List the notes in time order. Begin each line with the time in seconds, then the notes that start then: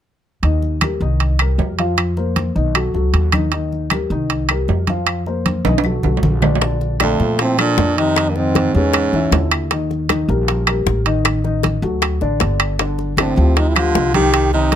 0.43 D#2 D#3 D#4 D#5, high conga, high timbale
0.62 high conga
0.81 G3 G4 A#4, high conga, high timbale, claves
1.00 C2 D#3 D#4 D#5, high conga
1.20 high conga, high timbale
1.39 G3 G4 A#4, high conga, high timbale, claves
1.58 F2, high conga, low timbale
1.79 F3 F4 F5, high timbale
1.97 high conga, high timbale, claves
2.17 A#3 A#4 C5, high conga
2.36 high conga, high timbale
2.55 B1 D#3 D#4 D#5, high conga
2.75 F#3 F#4 A4, high conga, high timbale, claves
2.94 C#2 F#3 F#4 A4, high conga
3.13 D#2, high conga, high timbale
3.32 D#3 D#4 D#5, high conga, high timbale, claves
3.52 D#3 D#4 D#5, high conga, high timbale
3.72 high conga
3.90 G3 G4 A#4, high conga, high timbale, claves
4.10 C2 D#3 D#4 D#5, high conga
4.30 high conga, high timbale
4.49 G3 G4 A#4, high conga, high timbale, claves
4.68 F2, high conga, low timbale
4.87 F3 F4 F5, high conga, high timbale
5.07 high conga, high timbale, claves
5.26 A#3 A#4 C5, high conga
5.46 high conga, high timbale
5.65 B1 D#3 D#4 D#5, high conga, high timbale
5.78 high timbale
5.84 F#3 F#4 A4, high conga, claves
6.03 B1 F#3 F#4 A4, low conga, high timbale
6.17 low timbale
6.23 A#1, low conga
6.42 D3 D4 D5, low conga, low timbale, claves
6.55 low timbale
6.61 D3 D4 D5, high bongo, high conga, high timbale
6.81 high bongo, high conga
7.00 F2 D3 A3 D4 D5, high bongo, high conga, high timbale, claves
7.20 A#2 F3 F4 A4, high bongo, high conga
7.39 A2 C4, high bongo, high conga, high timbale
7.58 A#2 F3 D4 F4 A4, high bongo, high conga, high timbale, claves
7.77 F2, high bongo, low bongo, high conga, low timbale
7.98 C3 D#3 D#4 D#5, high timbale
8.16 high bongo, high conga, high timbale, claves
8.28 G2 A#3
8.36 G#2 D#3 C4 D#4 D#5, high bongo, high conga
8.55 high bongo, high conga, high timbale
8.74 E2 G#2 G#3 C#4 G#4 B4, high conga
8.93 high bongo, high conga, high timbale, claves
9.13 E2 E3 E4 E5, high bongo, high conga
9.31 D#2 D3 E4, high bongo, low bongo, high conga, high timbale, low timbale
9.51 high bongo, high timbale, claves
9.71 D#3 D#4 D#5, high bongo, high conga, high timbale
9.91 high bongo, high conga
10.09 D#3 D#4 D#5, high bongo, high conga, high timbale, claves
10.28 A#1 G3 G4 A#4, high bongo, high conga
10.48 high bongo, high conga, high timbale
10.67 G3 G4 A#4, high bongo, high conga, high timbale, claves
10.86 A1, high bongo, low bongo, high conga
11.06 D#3 D#4 D#5, high timbale
11.25 high bongo, high conga, high timbale, claves
11.44 D#3 D#4 D#5, high bongo, high conga
11.63 high bongo, high conga, high timbale
11.82 D2 F#3 F#4 A4, high conga
12.02 high bongo, high conga, high timbale, claves
12.21 A1 D3 D4 D5, high bongo, high conga
12.40 G1 D3 D4 D5, high bongo, low bongo, high conga, high timbale
12.60 high bongo, high timbale, claves
12.79 D3 D4 D5, high bongo, high conga, high timbale
12.99 high bongo, high conga
13.17 A2 D3 C4 D4 D5, high bongo, high conga, high timbale, claves
13.36 D2 F3 F4 G4, high bongo, high conga
13.56 C3 D#4, high bongo, high conga, high timbale
13.69 C3 E4
13.75 D3 F3 F4 G4, high bongo, high conga, high timbale, claves
13.95 C2, high bongo, low bongo, high conga, low timbale
14.14 D#3 D#4 G4 D#5, high conga, high timbale
14.34 high bongo, high conga, high timbale, claves
14.53 C3 D#3 D#4 D#5, high bongo, high conga
14.72 high bongo, high timbale